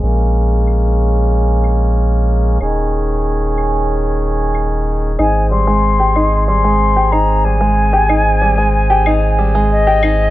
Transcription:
<<
  \new Staff \with { instrumentName = "Flute" } { \time 4/4 \key aes \major \tempo 4 = 93 r1 | r1 | aes''8 c'''4. c'''4 bes''8 aes''8~ | aes''2~ aes''8 r8 ees''4 | }
  \new Staff \with { instrumentName = "Five-string banjo" } { \time 4/4 \key aes \major r1 | r1 | ees'8 g16 aes8 g'16 ees'8 g16 aes8 g'16 ees'8 g16 aes16~ | aes16 g'16 ees'8 g16 aes8 g'16 ees'8 g16 aes8 g'16 ees'8 | }
  \new Staff \with { instrumentName = "Accordion" } { \time 4/4 \key aes \major <aes bes des'>1 | <ees des' aes'>1 | <c' aes'>1~ | <c' aes'>1 | }
  \new Staff \with { instrumentName = "Sub bass" } { \clef bass \time 4/4 \key aes \major bes,,1 | ees,,1 | aes,,1~ | aes,,1 | }
  \new DrumStaff \with { instrumentName = "Drums" } \drummode { \time 4/4 r4 cl4 r8 cl8 r4 | cl4 r8 cl8 r4 cl4 | cl4 r8 cl8 r4 cl4 | r8 cl8 r4 cl4 r8 cl8 | }
>>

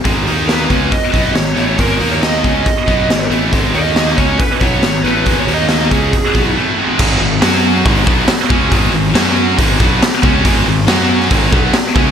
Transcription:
<<
  \new Staff \with { instrumentName = "Lead electric guitar" } { \time 4/4 \key gis \minor \tempo 4 = 139 r4 b'4 dis''4 cis''4 | ais'8. cis''16 dis''2~ dis''8 r8 | r8 dis''4 cis''8 b'8 cis''4 b'8~ | \tuplet 3/2 { b'8 cis''8 dis''8 } dis''8 gis'4. r4 |
r1 | r1 | r1 | }
  \new Staff \with { instrumentName = "Distorted electric guitar" } { \clef bass \time 4/4 \key gis \minor <gis, dis gis>8 <dis ais dis'>4 <cis gis cis'>8 r8 <b, fis b>8 <gis, dis>8 <a, e a>8 | <gis, dis gis>8 <dis ais dis'>4 <cis gis cis'>8 r8 <b, fis b>8 <gis, dis>8 <a, e a>8 | <gis, dis gis>8 <dis ais dis'>4 <cis gis cis'>8 r8 <b, fis b>8 <gis, dis>8 <a, e a>8 | <gis, dis gis>8 <dis ais dis'>4 <cis gis cis'>8 r8 <b, fis b>8 <a, e a>8 <gis, dis gis>8 |
<gis, dis gis>8 <gis, dis>8 <fis cis' fis'>4 <gis, dis gis>8 <b, fis b>8 r8 <cis gis cis'>8 | <gis, dis gis>8 <gis, dis>8 <fis cis' fis'>4 <gis, dis gis>8 <b, fis b>8 r8 <cis gis cis'>8 | <gis, dis gis>8 <gis, dis>8 <fis cis' fis'>4 <gis, dis gis>8 <b, fis b>8 r8 <cis gis cis'>8 | }
  \new Staff \with { instrumentName = "Distorted electric guitar" } { \clef bass \time 4/4 \key gis \minor <gis, dis gis>8 <dis ais dis'>4 <cis gis cis'>8 r8 <b, fis b>8 <gis, dis>8 <a, e a>8 | <gis, dis gis>8 <dis ais dis'>4 <cis gis cis'>8 r8 <b, fis b>8 <gis, dis>8 <a, e a>8 | <gis, dis gis>8 <dis ais dis'>4 <cis gis cis'>8 r8 <b, fis b>8 <gis, dis>8 <a, e a>8 | <gis, dis gis>8 <dis ais dis'>4 <cis gis cis'>8 r8 <b, fis b>8 <a, e a>8 <gis, dis gis>8 |
<gis, dis gis>8 <gis, dis>8 <fis cis' fis'>4 <gis, dis gis>8 <b, fis b>8 r8 <cis gis cis'>8 | <gis, dis gis>8 <gis, dis>8 <fis cis' fis'>4 <gis, dis gis>8 <b, fis b>8 r8 <cis gis cis'>8 | <gis, dis gis>8 <gis, dis>8 <fis cis' fis'>4 <gis, dis gis>8 <b, fis b>8 r8 <cis gis cis'>8 | }
  \new Staff \with { instrumentName = "Fingered electric bass" } { \clef bass \time 4/4 \key gis \minor gis,,8 dis,4 cis,8 r8 b,,8 gis,,8 a,,8 | gis,,8 dis,4 cis,8 r8 b,,8 gis,,8 a,,8 | gis,,8 dis,4 cis,8 r8 b,,8 gis,,8 a,,8 | gis,,8 dis,4 cis,8 r8 b,,8 r4 |
gis,,8 gis,,8 fis,4 gis,,8 b,,8 r8 cis,8 | gis,,8 gis,,8 fis,4 gis,,8 b,,8 r8 cis,8 | gis,,8 gis,,8 fis,4 gis,,8 b,,8 r8 cis,8 | }
  \new DrumStaff \with { instrumentName = "Drums" } \drummode { \time 4/4 <hho bd>8 hho8 <hho sn>8 <hho bd>8 <hho bd>8 <hho bd>8 <hho sn>8 hho8 | <hho bd>8 hho8 <hho sn>8 <hho bd>8 <hho bd>8 <hho bd>8 <hho sn>8 hho8 | <hho bd>8 hho8 <hho sn>8 <hho bd>8 <hho bd>8 <hho bd>8 <hho sn>8 hho8 | <hho bd>8 hho8 <hho sn>8 <hho bd>8 <hho bd>8 <hho bd>8 r4 |
<cymc bd>4 <hho sn>4 <hho bd>8 bd8 <hho sn>8 bd8 | <hho bd>4 <hho sn>4 <hho bd>8 bd8 <hho sn>8 bd8 | <hho bd>4 <hho sn>8. sn16 <hho bd>8 bd8 <hho sn>8 bd8 | }
>>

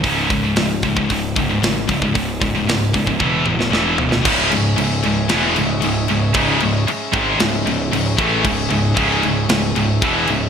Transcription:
<<
  \new Staff \with { instrumentName = "Pipe organ" } { \time 4/4 \key cis \minor \tempo 4 = 114 r1 | r1 | <cis' gis' dis'' e''>1~ | <cis' gis' dis'' e''>1~ |
<cis' gis' dis'' e''>1 | }
  \new Staff \with { instrumentName = "Distorted electric guitar" } { \clef bass \time 4/4 \key cis \minor <cis, gis, cis>8 <cis, gis,>16 <cis, gis,>16 <cis, gis,>8 <cis, gis,>16 <cis, gis,>16 <cis, gis,>8 <cis, gis,>16 <cis, gis,>16 <cis, gis,>8 <cis, gis,>16 <cis, gis,>16 | <cis, gis,>8 <cis, gis,>16 <cis, gis,>16 <cis, gis,>8 <cis, gis,>16 <cis, gis,>16 <e, b, e>8 <e, b,>16 <e, b,>16 <e, b, e>8 <e, b,>16 <e, b,>16 | <cis, gis, cis>8 <cis, gis,>8 <cis, gis,>8 <cis, gis,>8 <e, b, e>8 <cis, gis,>8 <cis, gis,>8 <cis, gis,>8 | <cis, gis, cis>8 <cis, gis,>8 r8 <gis, dis gis>8 <cis, gis,>8 <cis, gis,>8 <cis, gis,>8 <a, e a>8 |
<cis, gis,>8 <cis, gis,>8 <cis, gis, cis>8 <cis, gis,>8 <cis, gis,>8 <cis, gis,>8 <e, b, e>8 <cis, gis,>8 | }
  \new Staff \with { instrumentName = "Distorted electric guitar" } { \clef bass \time 4/4 \key cis \minor <cis, gis, cis>8 <cis, gis,>16 <cis, gis,>16 <cis, gis,>8 <cis, gis,>16 <cis, gis,>16 <cis, gis,>8 <cis, gis,>16 <cis, gis,>16 <cis, gis,>8 <cis, gis,>16 <cis, gis,>16 | <cis, gis,>8 <cis, gis,>16 <cis, gis,>16 <cis, gis,>8 <cis, gis,>16 <cis, gis,>16 <e, b, e>8 <e, b,>16 <e, b,>16 <e, b, e>8 <e, b,>16 <e, b,>16 | <cis, gis, cis>8 <cis, gis,>8 <cis, gis,>8 <cis, gis,>8 <e, b, e>8 <cis, gis,>8 <cis, gis,>8 <cis, gis,>8 | <cis, gis, cis>8 <cis, gis,>8 r8 <gis, dis gis>8 <cis, gis,>8 <cis, gis,>8 <cis, gis,>8 <a, e a>8 |
<cis, gis,>8 <cis, gis,>8 <cis, gis, cis>8 <cis, gis,>8 <cis, gis,>8 <cis, gis,>8 <e, b, e>8 <cis, gis,>8 | }
  \new Staff \with { instrumentName = "Distorted electric guitar" } { \clef bass \time 4/4 \key cis \minor r1 | r1 | <cis, gis, cis>8 <cis, gis,>8 <cis, gis,>8 <cis, gis,>8 <e, b, e>8 <cis, gis,>8 <cis, gis,>8 <cis, gis,>8 | <cis, gis, cis>8 <cis, gis,>8 r8 <gis, dis gis>8 <cis, gis,>8 <cis, gis,>8 <cis, gis,>8 <a, e a>8 |
<cis, gis,>8 <cis, gis,>8 <cis, gis, cis>8 <cis, gis,>8 <cis, gis,>8 <cis, gis,>8 <e, b, e>8 <cis, gis,>8 | }
  \new Staff \with { instrumentName = "Picked electric bass" } { \clef bass \time 4/4 \key cis \minor cis,,4 cis,,4 cis,,8 cis,,8 gis,,8 cis,,8 | cis,,4 cis,,8 cis,,8 e,,8 e,,8 e,,8 dis,,8 | cis,,8 cis,,8 cis,,8 cis,,8 e,,8 cis,,8 cis,,8 cis,,8 | cis,,8 cis,,8 r8 gis,,8 cis,,8 cis,,8 cis,,8 a,,8 |
cis,,8 cis,,8 cis,,8 cis,,8 cis,,8 cis,,8 e,,8 cis,,8 | }
  \new DrumStaff \with { instrumentName = "Drums" } \drummode { \time 4/4 <hho bd>8 <hho bd>8 <hho sn>8 <hho bd>16 bd16 <hho bd>8 <hho bd>8 <hho sn>8 <hho bd>16 bd16 | <hho bd>8 <hho bd>8 <hho sn>8 <hho bd>16 bd16 <bd tommh>8 toml16 sn16 sn8 tomfh16 sn16 | <cymc bd>8 cymc8 cymc8 cymc8 <cymc sn>8 cymc8 cymc8 cymc8 | <cymc bd>8 cymc8 cymc8 <cymc bd>8 <cymc sn>8 cymc8 cymc8 <cymc bd>8 |
<cymc bd>8 cymc8 <cymc bd>8 cymc8 <cymc sn>8 cymc8 <cymc bd>8 cymc8 | }
>>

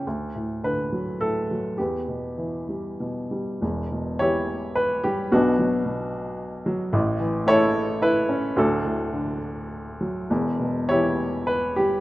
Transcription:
<<
  \new Staff \with { instrumentName = "Upright piano" } { \time 3/4 \key e \dorian \tempo 4 = 105 << { r4 b'4 a'4 | g'2 r4 | r4 cis''4 b'8 g'8 | fis'4. r4. |
r4 cis''4 b'4 | a'4. r4. | r4 cis''4 b'8 g'8 | } \\ { r2. | b2 r4 | r4 <e' g'>4. r8 | <b d'>4. r4. |
r4 <e' a'>4 e'4 | <d' fis'>4. r4. | r4 <e' g'>4. r8 | } >> }
  \new Staff \with { instrumentName = "Upright piano" } { \clef bass \time 3/4 \key e \dorian d,8 a,8 d8 fis8 a,8 fis8 | e,8 b,8 e8 g8 b,8 g8 | <e,, e,>8 b,8 e4. g8 | <b,, b,>8 fis8 b,4. fis8 |
<a,, a,>8 e8 a4. cis'8 | <d,, d,>8 a,8 d4. fis8 | <e,, e,>8 b,8 e4. g8 | }
>>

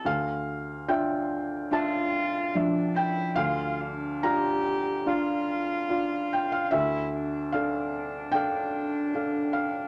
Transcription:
<<
  \new Staff \with { instrumentName = "Felt piano" } { \time 4/4 \key d \minor \tempo 4 = 73 << { f''4 g''4 a''4. g''8 | f''4 bes''2~ bes''8 g''16 f''16 | e''4 f''4 g''4. f''8 | } \\ { d,4 <d' f' e''>4 <d' f' e''>4 <f d' e''>4 | d,4 <d' f' f''>4 <d' f' f''>4 <d' f' f''>4 | d,4 <d' a'>4 <d' a' f''>4 <d' a' f''>4 | } >> }
  \new Staff \with { instrumentName = "Cello" } { \time 4/4 \key d \minor r2 f'4 d'8 e'8 | f'8 d'8 g'4 f'2 | e'8 d'2.~ d'8 | }
>>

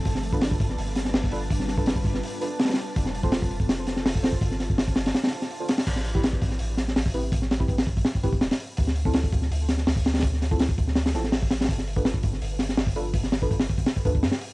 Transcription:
<<
  \new Staff \with { instrumentName = "Synth texture" } { \time 4/4 \key g \mixolydian \tempo 4 = 165 a''1~ | a''1~ | a''1~ | a''1 |
r1 | r1 | r1 | r1 |
r1 | r1 | }
  \new Staff \with { instrumentName = "Ambient pad" } { \time 4/4 \key g \mixolydian r8. <g b d' f' b'>2.~ <g b d' f' b'>16 | r8. <g b d' f' b'>2.~ <g b d' f' b'>16 | r8. <c' f' a'>2.~ <c' f' a'>16 | r8. <d' f' g' c'' f''>2.~ <d' f' g' c'' f''>16 |
r1 | r1 | r1 | r1 |
r1 | r1 | }
  \new Staff \with { instrumentName = "Synth stab" } { \time 4/4 \key g \mixolydian r8. <d' f' a' b'>2~ <d' f' a' b'>8. <d' f' a' b'>16 r16 | r8. <d' f' a' b'>8 r4 r16 <d' f' a' b'>16 r4 r16 | r8. <c' f' a' c''>2~ <c' f' a' c''>8. <c' f' a' c''>16 r16 | r2. r16 <d' f' a' c''>16 r8 |
r8. <c' e' g' b'>2~ <c' e' g' b'>8. <c' e' g' b'>16 r16 | r8. <c' e' g' b'>8 r4 r16 <c' e' g' b'>16 r4 r16 | r8. <c' e' f' a'>2~ <c' e' f' a'>8. r8 | r8. <c' e' f' a'>8 r4 r16 <c' e' f' a'>16 r4 r16 |
r8. <d' f' a' b'>2~ <d' f' a' b'>8. <d' f' a' b'>16 r16 | r8. <d' f' a' b'>8 r4 r16 <d' f' a' b'>16 r4 r16 | }
  \new Staff \with { instrumentName = "Sub bass" } { \clef bass \time 4/4 \key g \mixolydian g,,4. g,,8 g,,4 g,,4 | g,,4. g,,8 r2 | f,,4. f,,8 f,,4 f,,4 | g,,4. g,,8 r2 |
a,,4. a,,8 a,,4 a,,4 | a,,4. a,,8 r8 e,,8 e,,8 r8 | d,4. d,8 d,4 d,4 | d,4. d,4 a,,4. |
g,,4. g,,8 g,,4 g,,4 | g,,4. g,,8 r8 d,8 g,8 r8 | }
  \new DrumStaff \with { instrumentName = "Drums" } \drummode { \time 4/4 <hho bd>16 sn16 hho16 bd16 <hho sn>16 bd16 <hho bd>16 sn16 hho8 <hho sn>16 sn16 <hho sn>16 bd16 hho8 | <hho bd>16 sn16 <hho sn>16 bd16 <hho sn>16 bd16 <hho bd>16 sn16 hho8 hho8 <hho sn>32 <hho sn>32 <hho sn>32 <hho sn>32 hho8 | <hho bd>16 sn16 hho16 bd16 <hho sn>16 bd16 hho16 bd16 <hho sn>8 <hho sn>16 sn16 <hho sn>16 bd16 <hho sn>16 bd16 | <hho bd>16 sn16 <hho sn>16 bd16 <hho sn>16 bd16 <hho sn>16 <hho sn>16 <hho sn>16 <hho sn>32 <hho sn>32 hho16 sn16 hho8 <hho sn>16 <hho sn>16 |
<cymc hho bd>16 sn16 hho16 bd16 <hho sn>16 bd16 <hho bd>16 sn16 hho8 <hho sn>16 sn16 <hho sn>16 bd16 hho8 | <hho bd>16 sn16 <hho sn>16 bd16 <hho bd>16 <hho sn>16 bd16 <hho bd>16 <hho sn>16 bd16 <hho bd>16 bd16 <hho sn>16 <hho sn>16 hho8 | <hho bd>16 sn16 hho16 bd16 <hho sn>16 bd16 <hho bd>16 sn16 hho8 <hho sn>16 sn16 <hho sn>16 bd16 <hho sn>16 <hho sn>32 <hho sn>32 | <hho bd>16 sn16 <hho sn>16 bd16 <hho sn>16 bd16 <hho bd>16 sn16 <hho sn>16 <hho sn>16 <hho sn>16 sn16 <hho sn>16 bd16 <hho sn>16 <hho sn>32 <hho sn>32 |
<hho bd>16 sn16 hho16 bd16 <hho sn>16 bd16 <hho bd>16 sn16 hho8 <hho sn>16 sn16 <hho sn>16 bd16 hho8 | <hho bd>16 sn16 <hho sn>16 bd16 <hho bd>16 <hho sn>16 bd16 <hho bd>16 <hho sn>16 bd16 <hho bd>16 bd16 <hho sn>16 <hho sn>16 hho8 | }
>>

